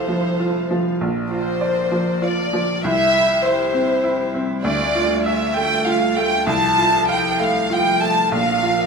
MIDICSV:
0, 0, Header, 1, 4, 480
1, 0, Start_track
1, 0, Tempo, 608519
1, 797, Time_signature, 3, 2, 24, 8
1, 5110, Tempo, 619835
1, 6958, End_track
2, 0, Start_track
2, 0, Title_t, "Violin section"
2, 0, Program_c, 0, 48
2, 0, Note_on_c, 0, 72, 64
2, 559, Note_off_c, 0, 72, 0
2, 1032, Note_on_c, 0, 72, 77
2, 1723, Note_off_c, 0, 72, 0
2, 1745, Note_on_c, 0, 74, 72
2, 2235, Note_off_c, 0, 74, 0
2, 2245, Note_on_c, 0, 76, 102
2, 2709, Note_off_c, 0, 76, 0
2, 2717, Note_on_c, 0, 72, 80
2, 3421, Note_off_c, 0, 72, 0
2, 3656, Note_on_c, 0, 74, 97
2, 4114, Note_off_c, 0, 74, 0
2, 4149, Note_on_c, 0, 76, 88
2, 4383, Note_on_c, 0, 79, 102
2, 4384, Note_off_c, 0, 76, 0
2, 4625, Note_off_c, 0, 79, 0
2, 4629, Note_on_c, 0, 77, 87
2, 4865, Note_on_c, 0, 79, 96
2, 4869, Note_off_c, 0, 77, 0
2, 5108, Note_off_c, 0, 79, 0
2, 5111, Note_on_c, 0, 81, 106
2, 5579, Note_off_c, 0, 81, 0
2, 5583, Note_on_c, 0, 79, 91
2, 5820, Note_off_c, 0, 79, 0
2, 5832, Note_on_c, 0, 77, 90
2, 6065, Note_on_c, 0, 79, 97
2, 6069, Note_off_c, 0, 77, 0
2, 6304, Note_off_c, 0, 79, 0
2, 6308, Note_on_c, 0, 81, 91
2, 6545, Note_off_c, 0, 81, 0
2, 6548, Note_on_c, 0, 77, 97
2, 6958, Note_off_c, 0, 77, 0
2, 6958, End_track
3, 0, Start_track
3, 0, Title_t, "String section"
3, 0, Program_c, 1, 48
3, 0, Note_on_c, 1, 53, 44
3, 0, Note_on_c, 1, 69, 47
3, 0, Note_on_c, 1, 77, 47
3, 765, Note_off_c, 1, 69, 0
3, 795, Note_on_c, 1, 70, 50
3, 795, Note_on_c, 1, 74, 49
3, 796, Note_off_c, 1, 77, 0
3, 2205, Note_off_c, 1, 53, 0
3, 2239, Note_off_c, 1, 74, 0
3, 2240, Note_off_c, 1, 70, 0
3, 2241, Note_on_c, 1, 76, 64
3, 2242, Note_on_c, 1, 55, 58
3, 2244, Note_on_c, 1, 67, 59
3, 3657, Note_on_c, 1, 65, 65
3, 3662, Note_on_c, 1, 69, 63
3, 3664, Note_off_c, 1, 76, 0
3, 3665, Note_off_c, 1, 67, 0
3, 5110, Note_off_c, 1, 55, 0
3, 5114, Note_on_c, 1, 53, 69
3, 6540, Note_off_c, 1, 65, 0
3, 6543, Note_off_c, 1, 69, 0
3, 6547, Note_on_c, 1, 74, 61
3, 6548, Note_on_c, 1, 70, 62
3, 6958, Note_off_c, 1, 53, 0
3, 6958, Note_off_c, 1, 70, 0
3, 6958, Note_off_c, 1, 74, 0
3, 6958, End_track
4, 0, Start_track
4, 0, Title_t, "Upright piano"
4, 0, Program_c, 2, 0
4, 0, Control_c, 2, 64, 127
4, 0, Note_on_c, 2, 36, 51
4, 0, Note_on_c, 2, 65, 41
4, 0, Note_on_c, 2, 69, 46
4, 65, Note_on_c, 2, 53, 43
4, 218, Note_off_c, 2, 69, 0
4, 312, Note_off_c, 2, 65, 0
4, 312, Note_on_c, 2, 65, 47
4, 457, Note_off_c, 2, 53, 0
4, 557, Note_on_c, 2, 53, 48
4, 699, Note_off_c, 2, 65, 0
4, 764, Note_off_c, 2, 36, 0
4, 796, Note_on_c, 2, 34, 59
4, 797, Note_off_c, 2, 53, 0
4, 813, Control_c, 2, 64, 0
4, 919, Control_c, 2, 64, 127
4, 1034, Note_on_c, 2, 65, 43
4, 1269, Note_on_c, 2, 74, 50
4, 1418, Note_off_c, 2, 65, 0
4, 1511, Note_on_c, 2, 53, 45
4, 1657, Note_off_c, 2, 74, 0
4, 1751, Note_on_c, 2, 65, 51
4, 1899, Note_off_c, 2, 53, 0
4, 1997, Note_on_c, 2, 53, 51
4, 2141, Note_off_c, 2, 65, 0
4, 2208, Note_off_c, 2, 34, 0
4, 2240, Note_off_c, 2, 53, 0
4, 2243, Note_on_c, 2, 36, 67
4, 2257, Control_c, 2, 64, 0
4, 2367, Control_c, 2, 64, 127
4, 2480, Note_on_c, 2, 64, 48
4, 2723, Note_on_c, 2, 76, 56
4, 2857, Note_off_c, 2, 64, 0
4, 2946, Note_on_c, 2, 60, 52
4, 3093, Note_off_c, 2, 76, 0
4, 3184, Note_on_c, 2, 64, 59
4, 3323, Note_off_c, 2, 60, 0
4, 3426, Note_on_c, 2, 60, 56
4, 3566, Note_off_c, 2, 64, 0
4, 3633, Note_off_c, 2, 36, 0
4, 3663, Note_on_c, 2, 38, 72
4, 3666, Note_off_c, 2, 60, 0
4, 3678, Control_c, 2, 64, 0
4, 3822, Control_c, 2, 64, 127
4, 3907, Note_on_c, 2, 65, 55
4, 4149, Note_on_c, 2, 76, 63
4, 4292, Note_off_c, 2, 65, 0
4, 4387, Note_on_c, 2, 57, 50
4, 4532, Note_off_c, 2, 76, 0
4, 4625, Note_on_c, 2, 65, 62
4, 4771, Note_off_c, 2, 57, 0
4, 4863, Note_on_c, 2, 57, 57
4, 5011, Note_off_c, 2, 65, 0
4, 5078, Note_off_c, 2, 38, 0
4, 5101, Note_on_c, 2, 36, 75
4, 5107, Note_off_c, 2, 57, 0
4, 5123, Control_c, 2, 64, 0
4, 5263, Control_c, 2, 64, 127
4, 5344, Note_on_c, 2, 65, 53
4, 5582, Note_on_c, 2, 77, 60
4, 5729, Note_off_c, 2, 65, 0
4, 5820, Note_on_c, 2, 57, 53
4, 5968, Note_off_c, 2, 77, 0
4, 6057, Note_on_c, 2, 65, 58
4, 6206, Note_off_c, 2, 57, 0
4, 6297, Note_on_c, 2, 57, 50
4, 6443, Note_off_c, 2, 65, 0
4, 6508, Note_off_c, 2, 36, 0
4, 6533, Note_on_c, 2, 34, 68
4, 6540, Note_off_c, 2, 57, 0
4, 6559, Control_c, 2, 64, 0
4, 6666, Control_c, 2, 64, 127
4, 6776, Note_on_c, 2, 65, 50
4, 6958, Note_off_c, 2, 34, 0
4, 6958, Note_off_c, 2, 65, 0
4, 6958, End_track
0, 0, End_of_file